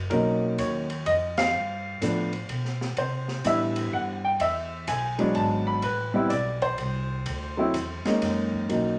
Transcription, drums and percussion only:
0.10 kick, ride
0.58 kick, hi-hat pedal, ride
0.90 ride
1.06 kick, ride
1.37 snare, ride
2.02 kick, hi-hat pedal, ride
2.33 ride
2.49 kick, ride
2.65 snare
2.81 snare
2.97 kick, ride
3.28 snare
3.44 kick, hi-hat pedal, ride
3.76 ride
3.92 kick
4.40 kick, ride
4.87 kick, hi-hat pedal, ride
5.19 ride
5.35 kick, ride
5.82 kick, ride
6.30 kick, hi-hat pedal, ride
6.62 kick, ride
6.78 kick, ride
7.26 kick, ride
7.74 kick, hi-hat pedal, ride
8.05 snare, ride
8.22 kick, snare, ride
8.53 kick
8.70 ride

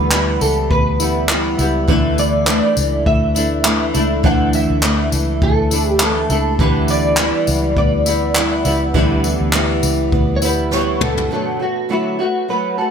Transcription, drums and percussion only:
0.11 clap
0.41 tambourine
0.71 kick
1.00 tambourine
1.29 clap
1.59 tambourine
1.88 kick
2.18 tambourine
2.47 clap
2.77 tambourine
3.06 kick
3.36 tambourine
3.65 clap
3.95 tambourine
4.24 kick
4.53 tambourine
4.83 clap
5.12 tambourine
5.42 kick
5.71 tambourine
6.00 clap
6.30 tambourine
6.59 kick
6.88 tambourine
7.17 clap
7.47 tambourine
7.77 kick
8.06 tambourine
8.35 clap
8.65 tambourine
8.94 kick
9.24 tambourine
9.53 clap
9.83 tambourine
10.12 kick
10.42 tambourine
10.72 snare
11.01 mid tom
11.17 floor tom

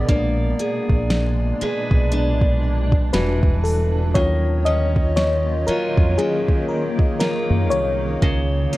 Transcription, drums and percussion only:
0.09 kick, closed hi-hat
0.59 closed hi-hat
0.89 kick
1.10 snare, closed hi-hat
1.61 closed hi-hat
1.91 kick
2.12 closed hi-hat
2.42 kick
2.92 kick
3.13 snare, closed hi-hat
3.43 kick
3.65 open hi-hat
4.15 kick, closed hi-hat
4.66 closed hi-hat
4.96 kick
5.17 snare, closed hi-hat
5.68 closed hi-hat
5.98 kick
6.19 closed hi-hat
6.48 kick
6.99 kick
7.20 snare, closed hi-hat
7.72 closed hi-hat
8.22 kick, closed hi-hat
8.73 closed hi-hat

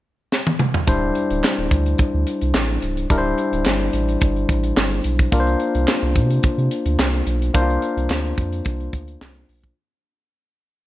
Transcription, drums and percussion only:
0.32 snare
0.47 high tom
0.59 mid tom
0.74 floor tom
0.87 kick, closed hi-hat
1.15 closed hi-hat
1.31 closed hi-hat
1.44 snare, clap
1.58 closed hi-hat
1.71 kick, closed hi-hat
1.86 closed hi-hat
1.98 kick, closed hi-hat
2.27 closed hi-hat
2.41 closed hi-hat
2.54 snare, clap
2.82 closed hi-hat
2.97 closed hi-hat
3.10 kick, closed hi-hat
3.38 closed hi-hat
3.53 closed hi-hat
3.66 snare, clap
3.81 closed hi-hat
3.93 closed hi-hat
4.09 closed hi-hat
4.21 kick, closed hi-hat
4.36 closed hi-hat
4.49 kick, closed hi-hat
4.63 closed hi-hat
4.77 snare, clap
4.91 closed hi-hat
5.04 closed hi-hat
5.19 kick, closed hi-hat
5.32 kick, closed hi-hat
5.47 closed hi-hat
5.60 closed hi-hat
5.75 closed hi-hat
5.88 snare, clap
6.15 kick, closed hi-hat
6.30 closed hi-hat
6.43 kick, closed hi-hat
6.59 closed hi-hat
6.71 closed hi-hat
6.86 closed hi-hat
6.99 snare, clap
7.14 closed hi-hat
7.27 closed hi-hat
7.42 closed hi-hat
7.55 kick, closed hi-hat
7.70 closed hi-hat
7.82 closed hi-hat
7.97 closed hi-hat
8.10 snare, clap
8.25 closed hi-hat
8.38 kick, closed hi-hat
8.53 closed hi-hat
8.65 kick, closed hi-hat
8.80 closed hi-hat
8.93 kick, closed hi-hat
9.08 closed hi-hat
9.21 snare, clap
9.36 closed hi-hat
9.49 open hi-hat
9.64 kick, closed hi-hat

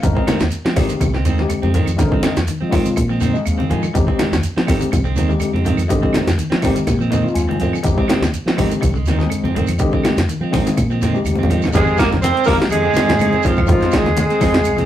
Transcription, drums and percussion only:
0.03 kick, closed hi-hat, low conga, shekere
0.17 kick
0.27 snare, closed hi-hat, high conga, claves, shekere
0.40 snare, shekere
0.50 closed hi-hat, shekere
0.66 snare
0.76 kick, open hi-hat, high conga, low conga, claves
0.89 closed hi-hat, shekere
1.01 kick, closed hi-hat, high conga, low conga, claves, shekere
1.14 snare, shekere
1.25 closed hi-hat, high conga, shekere
1.38 snare, shekere
1.49 closed hi-hat, claves, shekere
1.63 high conga
1.74 closed hi-hat, low conga, shekere
1.86 closed hi-hat, claves, shekere
1.98 kick, snare, closed hi-hat, low conga, shekere
2.12 kick
2.22 snare, closed hi-hat, high conga, claves, shekere
2.36 snare, closed hi-hat, shekere
2.47 closed hi-hat, shekere
2.72 kick, open hi-hat, high conga, low conga, claves
2.85 closed hi-hat, shekere
2.96 kick, closed hi-hat, claves, shekere
3.10 shekere
3.20 closed hi-hat, high conga, shekere
3.34 shekere
3.46 closed hi-hat, claves, shekere
3.60 high conga
3.70 closed hi-hat, high conga, low conga, shekere
3.83 claves, shekere
3.95 kick, closed hi-hat, low conga, shekere
4.08 kick
4.19 snare, closed hi-hat, high conga, claves, shekere
4.33 snare, high conga, shekere
4.43 closed hi-hat, shekere
4.58 snare
4.67 kick, open hi-hat, high conga, low conga, claves
4.81 closed hi-hat, shekere
4.92 kick, closed hi-hat, high conga, low conga, claves, shekere
5.05 shekere
5.16 closed hi-hat, high conga, shekere
5.30 shekere
5.40 closed hi-hat, claves, shekere
5.56 high conga
5.64 closed hi-hat, high conga, low conga, shekere
5.77 closed hi-hat, claves, shekere
5.90 kick, closed hi-hat, low conga, shekere
6.03 kick
6.13 snare, closed hi-hat, high conga, claves, shekere
6.27 snare, closed hi-hat, high conga, shekere
6.39 closed hi-hat, shekere
6.52 snare
6.62 kick, open hi-hat, high conga, low conga, claves
6.76 closed hi-hat, shekere
6.87 kick, snare, closed hi-hat, high conga, claves, shekere
7.01 shekere
7.12 snare, closed hi-hat, high conga, shekere
7.28 shekere
7.35 closed hi-hat, claves, shekere
7.51 high conga
7.60 closed hi-hat, low conga, shekere
7.73 claves, shekere
7.84 kick, closed hi-hat, shekere
7.98 kick
8.08 snare, closed hi-hat, high conga, claves, shekere
8.22 snare, high conga, shekere
8.34 closed hi-hat, shekere
8.48 snare
8.58 kick, open hi-hat, high conga, low conga, claves
8.71 closed hi-hat, shekere
8.82 kick, closed hi-hat, low conga, claves, shekere
8.95 shekere
9.06 snare, closed hi-hat, high conga, shekere
9.19 snare, shekere
9.30 closed hi-hat, claves, shekere
9.45 high conga
9.56 closed hi-hat, high conga, low conga, shekere
9.67 closed hi-hat, claves, shekere
9.78 kick, closed hi-hat, shekere
9.93 kick
10.04 snare, closed hi-hat, high conga, claves, shekere
10.17 snare, closed hi-hat, high conga, shekere
10.29 closed hi-hat, shekere
10.53 kick, open hi-hat, high conga, low conga, claves
10.66 snare, closed hi-hat, shekere
10.77 kick, closed hi-hat, high conga, claves, shekere
10.90 shekere
11.01 snare, closed hi-hat, high conga, shekere
11.15 shekere
11.25 closed hi-hat, high conga, claves, shekere
11.35 high conga
11.43 low conga
11.50 closed hi-hat, low conga, shekere
11.62 snare, claves, shekere
11.67 low conga
11.73 kick, closed hi-hat, low conga, shekere
11.87 shekere
11.98 kick, snare, closed hi-hat, claves, shekere
12.11 snare, high conga, low conga, shekere
12.22 closed hi-hat, high conga, shekere
12.34 closed hi-hat, shekere
12.44 kick, open hi-hat, claves, shekere
12.49 high conga
12.59 snare, shekere
12.70 closed hi-hat, claves, shekere
12.83 shekere
12.94 snare, closed hi-hat, high conga, shekere
13.08 snare, closed hi-hat, low conga, shekere
13.19 closed hi-hat, high conga, claves, shekere
13.32 high conga, shekere
13.42 kick, closed hi-hat, shekere
13.56 kick, claves, shekere
13.67 kick, closed hi-hat, low conga, shekere
13.80 snare, closed hi-hat, shekere
13.91 kick, snare, closed hi-hat, claves, shekere
14.04 snare, high conga, shekere
14.17 closed hi-hat, high conga, shekere
14.30 closed hi-hat, shekere
14.41 kick, open hi-hat, high conga, claves, shekere
14.54 snare, closed hi-hat, shekere
14.64 closed hi-hat, claves, shekere
14.77 closed hi-hat, high conga, shekere

